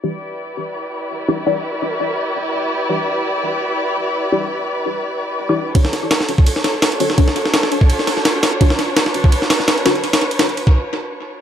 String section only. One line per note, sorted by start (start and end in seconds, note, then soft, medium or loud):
0.03 5.71 E4 medium
0.03 5.71 G4 medium
0.03 5.71 B4 medium
0.03 5.71 D5 medium
5.75 11.41 D4 medium
5.75 11.41 F#4 medium
5.75 8.58 A4 medium
5.75 11.41 C#5 medium
8.61 11.41 B4 medium